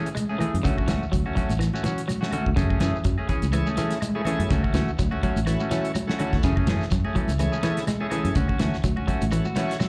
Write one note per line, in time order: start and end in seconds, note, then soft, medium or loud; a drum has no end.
0.06 closed hi-hat soft
0.06 shekere soft
0.15 0.28 G#3 medium
0.15 closed hi-hat medium
0.15 high conga medium
0.15 claves medium
0.15 shekere medium
0.29 0.39 A3 soft
0.29 0.41 C#4 soft
0.29 0.40 G#4 medium
0.39 0.51 E3 medium
0.39 0.56 E3 medium
0.39 0.56 A3 medium
0.39 0.56 G#4 medium
0.39 closed hi-hat soft
0.39 high conga medium
0.39 low conga medium
0.39 claves medium
0.39 shekere soft
0.54 0.62 F#2 medium
0.54 closed hi-hat soft
0.63 0.84 D2 medium
0.63 0.76 C#3 medium
0.63 0.78 F#3 medium
0.63 0.78 A3 medium
0.63 0.77 C#4 medium
0.63 0.76 F#4 medium
0.63 kick medium
0.63 closed hi-hat medium
0.63 shekere medium
0.77 0.87 A3 soft
0.77 0.87 C#4 soft
0.77 0.88 F#4 medium
0.77 kick medium
0.77 claves medium
0.88 0.99 D2 medium
0.88 1.00 E3 medium
0.88 1.04 F#3 medium
0.88 1.04 A3 medium
0.88 1.04 C#4 medium
0.88 1.04 F#4 medium
0.88 snare medium
0.88 closed hi-hat soft
0.88 high conga medium
0.88 low conga medium
0.88 shekere medium
1.03 shekere soft
1.12 1.24 D2 medium
1.12 1.24 F#3 medium
1.12 kick medium
1.12 closed hi-hat medium
1.12 shekere medium
1.26 1.35 A3 soft
1.26 1.36 C#4 medium
1.26 1.36 F#4 medium
1.26 claves medium
1.35 1.48 F#3 medium
1.35 1.52 F#3 medium
1.35 1.52 A3 medium
1.35 1.52 C#4 medium
1.35 1.52 F#4 medium
1.35 muted fingered electric bass stroke soft
1.35 kick medium
1.35 closed hi-hat soft
1.35 low conga medium
1.35 shekere soft
1.49 1.69 A1 medium
1.49 closed hi-hat soft
1.49 high conga medium
1.49 shekere medium
1.59 1.72 E3 medium
1.59 snare soft
1.59 closed hi-hat medium
1.59 claves medium
1.59 shekere medium
1.73 1.83 A3 soft
1.73 1.84 C#4 soft
1.73 1.84 F#4 medium
1.73 high conga medium
1.73 shekere medium
1.84 1.96 E3 medium
1.84 2.00 F#3 medium
1.84 2.01 C#4 medium
1.84 2.01 F#4 medium
1.84 muted clean electric guitar stroke medium
1.84 closed hi-hat soft
1.84 high conga medium
1.84 shekere medium
1.98 closed hi-hat soft
1.98 shekere soft
2.08 2.21 F#3 medium
2.08 closed hi-hat medium
2.08 high conga medium
2.08 claves medium
2.08 shekere medium
2.21 2.31 A3 soft
2.21 2.32 C#4 soft
2.21 2.32 F#4 medium
2.21 snare medium
2.32 2.46 D3 medium
2.32 2.48 F#3 medium
2.32 2.48 A3 medium
2.32 2.49 C#4 medium
2.32 2.49 F#4 medium
2.32 closed hi-hat soft
2.32 high conga medium
2.32 low conga medium
2.32 claves medium
2.32 shekere soft
2.46 2.55 D2 medium
2.46 kick medium
2.56 2.76 F#2 medium
2.56 2.69 C#3 medium
2.56 2.70 A3 medium
2.56 2.69 C#4 medium
2.56 2.69 G#4 medium
2.56 muted clean electric guitar stroke medium
2.56 kick medium
2.56 closed hi-hat medium
2.56 shekere medium
2.69 2.79 A3 soft
2.69 2.79 C#4 soft
2.69 2.79 G#4 soft
2.69 kick medium
2.69 claves medium
2.80 2.92 F#2 medium
2.80 2.96 E3 medium
2.80 2.94 E3 medium
2.80 2.96 A3 medium
2.80 2.96 C#4 medium
2.80 2.97 G#4 medium
2.80 snare medium
2.80 closed hi-hat soft
2.80 high conga medium
2.80 shekere medium
2.95 shekere soft
3.04 3.16 F#2 medium
3.04 3.18 F#3 medium
3.04 kick medium
3.04 closed hi-hat medium
3.04 shekere medium
3.18 3.28 A3 soft
3.18 3.28 C#4 soft
3.18 3.28 G#4 medium
3.18 claves medium
3.28 3.45 E3 medium
3.28 3.45 C#4 medium
3.28 3.45 G#4 medium
3.28 muted clean electric guitar stroke medium
3.28 muted fingered electric bass stroke soft
3.28 kick medium
3.28 closed hi-hat soft
3.28 low conga medium
3.28 shekere soft
3.42 3.62 C#2 medium
3.42 closed hi-hat soft
3.42 high conga medium
3.42 shekere medium
3.52 3.66 E3 medium
3.52 3.68 A3 medium
3.52 3.68 C#4 medium
3.52 3.68 E4 medium
3.52 3.68 G#4 medium
3.52 closed hi-hat medium
3.52 claves medium
3.52 shekere medium
3.67 3.76 A3 soft
3.67 3.77 C#4 medium
3.67 3.78 G#4 medium
3.67 high conga medium
3.67 shekere medium
3.76 3.93 E3 medium
3.76 3.90 E3 medium
3.76 3.99 A3 medium
3.76 3.93 A3 medium
3.76 3.99 C#4 medium
3.76 3.94 C#4 medium
3.76 3.99 E4 medium
3.76 3.99 G#4 medium
3.76 3.94 G#4 medium
3.76 snare soft
3.76 closed hi-hat soft
3.76 high conga medium
3.76 shekere medium
3.91 snare soft
3.91 closed hi-hat soft
3.91 shekere soft
4.01 4.14 G#3 medium
4.01 closed hi-hat medium
4.01 high conga medium
4.01 claves medium
4.01 shekere medium
4.15 4.22 A3 medium
4.15 4.25 A3 soft
4.15 4.22 C#4 medium
4.15 4.25 C#4 soft
4.15 4.22 E4 medium
4.15 4.26 G#4 medium
4.15 4.22 G#4 medium
4.25 4.41 E3 medium
4.25 4.39 E3 medium
4.25 4.50 A3 medium
4.25 4.42 A3 medium
4.25 4.50 C#4 medium
4.25 4.42 C#4 medium
4.25 4.50 E4 medium
4.25 4.50 G#4 medium
4.25 4.42 G#4 medium
4.25 closed hi-hat soft
4.25 high conga medium
4.25 low conga medium
4.25 claves medium
4.25 shekere soft
4.39 4.48 F#2 medium
4.39 closed hi-hat soft
4.50 4.70 D2 loud
4.50 4.63 C#3 medium
4.50 4.64 F#3 medium
4.50 4.64 A3 medium
4.50 4.63 C#4 medium
4.50 4.62 F#4 medium
4.50 kick medium
4.50 snare soft
4.50 closed hi-hat medium
4.50 shekere medium
4.63 4.73 A3 soft
4.63 4.73 C#4 soft
4.63 4.74 F#4 medium
4.63 kick medium
4.63 claves medium
4.73 4.84 D2 medium
4.73 4.87 E3 medium
4.73 4.90 F#3 medium
4.73 4.90 A3 medium
4.73 4.90 C#4 medium
4.73 4.90 F#4 medium
4.73 snare medium
4.73 closed hi-hat soft
4.73 high conga medium
4.73 shekere medium
4.88 shekere soft
4.98 5.10 D2 medium
4.98 5.11 F#3 medium
4.98 kick medium
4.98 closed hi-hat medium
4.98 shekere medium
5.11 5.21 A3 soft
5.11 5.22 C#4 soft
5.11 5.22 F#4 medium
5.11 high conga medium
5.11 claves medium
5.22 5.38 F#3 medium
5.22 5.36 F#3 medium
5.22 5.38 A3 medium
5.22 5.38 C#4 medium
5.22 5.38 F#4 medium
5.22 muted fingered electric bass stroke soft
5.22 kick medium
5.22 closed hi-hat medium
5.22 low conga medium
5.22 shekere soft
5.36 5.55 A1 medium
5.36 closed hi-hat medium
5.36 high conga medium
5.36 shekere medium
5.46 5.59 E3 medium
5.46 5.62 A3 medium
5.46 5.62 C#4 medium
5.46 5.62 E4 medium
5.46 5.62 F#4 medium
5.46 snare soft
5.46 closed hi-hat medium
5.46 claves medium
5.46 shekere medium
5.60 5.70 A3 soft
5.60 5.71 C#4 soft
5.60 5.71 F#4 medium
5.60 high conga medium
5.60 shekere medium
5.70 5.83 E3 medium
5.70 5.86 F#3 medium
5.70 5.92 A3 medium
5.70 5.87 A3 medium
5.70 5.92 C#4 medium
5.70 5.87 C#4 medium
5.70 5.92 E4 medium
5.70 5.92 F#4 medium
5.70 muted clean electric guitar stroke medium
5.70 snare soft
5.70 closed hi-hat soft
5.70 high conga medium
5.70 shekere medium
5.84 closed hi-hat soft
5.84 shekere soft
5.94 6.08 F#3 medium
5.94 closed hi-hat medium
5.94 high conga medium
5.94 claves medium
5.94 shekere medium
6.07 6.14 A3 medium
6.07 6.19 A3 soft
6.07 6.14 C#4 medium
6.07 6.20 C#4 medium
6.07 6.14 E4 medium
6.07 6.14 F#4 medium
6.07 6.19 F#4 medium
6.07 snare medium
6.18 6.32 D3 medium
6.18 6.35 F#3 medium
6.18 6.43 A3 medium
6.18 6.35 A3 medium
6.18 6.43 C#4 medium
6.18 6.35 C#4 medium
6.18 6.43 E4 medium
6.18 6.43 F#4 medium
6.18 6.35 F#4 medium
6.18 closed hi-hat soft
6.18 low conga medium
6.18 claves medium
6.18 shekere soft
6.33 6.41 D2 medium
6.33 kick medium
6.33 snare soft
6.43 6.63 F#2 loud
6.43 6.57 C#3 medium
6.43 6.57 E3 medium
6.43 6.57 A3 medium
6.43 6.57 C#4 medium
6.43 6.56 G#4 medium
6.43 kick medium
6.43 snare soft
6.43 closed hi-hat medium
6.43 shekere medium
6.56 6.67 A3 soft
6.56 6.67 C#4 soft
6.56 6.67 G#4 soft
6.56 kick medium
6.56 claves medium
6.67 6.78 F#2 medium
6.67 6.83 E3 medium
6.67 6.80 E3 medium
6.67 6.83 A3 medium
6.67 6.83 C#4 medium
6.67 6.84 G#4 medium
6.67 snare medium
6.67 closed hi-hat soft
6.67 high conga medium
6.67 low conga medium
6.67 shekere medium
6.80 snare soft
6.80 shekere soft
6.91 7.02 F#2 medium
6.91 7.04 F#3 medium
6.91 kick medium
6.91 snare soft
6.91 closed hi-hat medium
6.91 shekere medium
7.04 7.15 A3 medium
7.04 7.15 C#4 soft
7.04 7.15 G#4 medium
7.04 high conga medium
7.04 claves medium
7.15 7.31 E3 medium
7.15 7.28 F#3 medium
7.15 7.31 A3 medium
7.15 7.32 C#4 medium
7.15 muted fingered electric bass stroke soft
7.15 kick medium
7.15 closed hi-hat soft
7.15 low conga medium
7.15 shekere soft
7.28 7.48 C#2 medium
7.28 closed hi-hat soft
7.28 high conga medium
7.28 shekere medium
7.39 7.52 E3 medium
7.39 7.54 A3 medium
7.39 7.54 C#4 medium
7.39 7.54 E4 medium
7.39 7.55 G#4 medium
7.39 closed hi-hat medium
7.39 claves medium
7.39 shekere medium
7.52 7.63 A3 soft
7.52 7.63 C#4 medium
7.52 7.63 G#4 medium
7.52 shekere medium
7.63 7.76 E3 medium
7.63 7.79 E3 medium
7.63 7.85 A3 medium
7.63 7.79 A3 medium
7.63 7.85 C#4 medium
7.63 7.79 C#4 medium
7.63 7.85 E4 medium
7.63 7.85 G#4 medium
7.63 7.80 G#4 medium
7.63 snare soft
7.63 closed hi-hat soft
7.63 high conga medium
7.63 shekere medium
7.77 snare soft
7.77 closed hi-hat soft
7.77 shekere soft
7.87 8.00 G#3 medium
7.87 snare soft
7.87 closed hi-hat medium
7.87 high conga medium
7.87 claves medium
7.87 shekere medium
8.00 8.07 A3 medium
8.00 8.11 A3 soft
8.00 8.07 C#4 medium
8.00 8.11 C#4 medium
8.00 8.07 E4 medium
8.00 8.07 G#4 medium
8.00 8.11 G#4 medium
8.10 8.27 E3 medium
8.10 8.24 E3 medium
8.10 8.35 A3 medium
8.10 8.27 A3 medium
8.10 8.35 C#4 medium
8.10 8.28 C#4 medium
8.10 8.35 E4 medium
8.10 8.35 G#4 medium
8.10 8.28 G#4 medium
8.10 closed hi-hat medium
8.10 low conga medium
8.10 claves medium
8.10 shekere soft
8.24 8.33 F#2 medium
8.24 closed hi-hat medium
8.35 8.55 D2 loud
8.35 8.48 C#3 medium
8.35 8.49 C#4 medium
8.35 8.47 F#4 medium
8.35 muted clean electric guitar stroke medium
8.35 kick medium
8.35 closed hi-hat medium
8.35 shekere medium
8.48 8.59 C#4 soft
8.48 8.60 F#4 medium
8.48 kick medium
8.48 claves medium
8.59 8.71 D2 medium
8.59 8.72 E3 medium
8.59 8.75 A3 medium
8.59 8.76 C#4 medium
8.59 8.76 F#4 medium
8.59 snare medium
8.59 closed hi-hat medium
8.59 high conga medium
8.59 shekere medium
8.74 snare soft
8.74 shekere soft
8.84 8.95 D2 medium
8.84 8.96 F#3 medium
8.84 kick medium
8.84 closed hi-hat medium
8.84 shekere medium
8.96 9.07 C#4 soft
8.96 9.07 F#4 medium
8.96 high conga medium
8.96 claves medium
9.07 9.20 F#3 medium
9.07 9.23 A3 medium
9.07 9.23 C#4 medium
9.07 9.24 F#4 medium
9.07 muted fingered electric bass stroke soft
9.07 kick medium
9.07 closed hi-hat medium
9.07 low conga medium
9.07 shekere soft
9.21 9.41 A1 medium
9.21 closed hi-hat medium
9.21 high conga medium
9.21 shekere medium
9.31 9.45 E3 medium
9.31 9.47 A3 medium
9.31 9.47 C#4 medium
9.31 9.47 E4 medium
9.31 9.47 F#4 medium
9.31 closed hi-hat medium
9.31 claves medium
9.31 shekere medium
9.45 9.56 F#4 medium
9.45 muted clean electric guitar stroke soft
9.45 high conga medium
9.45 shekere medium
9.55 9.69 E3 medium
9.55 9.77 A3 medium
9.55 9.72 A3 medium
9.55 9.77 C#4 medium
9.55 9.72 C#4 medium
9.55 9.77 E4 medium
9.55 9.77 F#4 medium
9.55 9.72 F#4 medium
9.55 9.78 C#5 medium
9.55 snare soft
9.55 closed hi-hat soft
9.55 high conga medium
9.55 shekere medium
9.69 snare soft
9.69 closed hi-hat soft
9.69 shekere soft
9.79 9.89 F#3 medium
9.79 9.89 E5 medium
9.79 snare medium
9.79 high conga medium
9.79 claves medium
9.79 shekere medium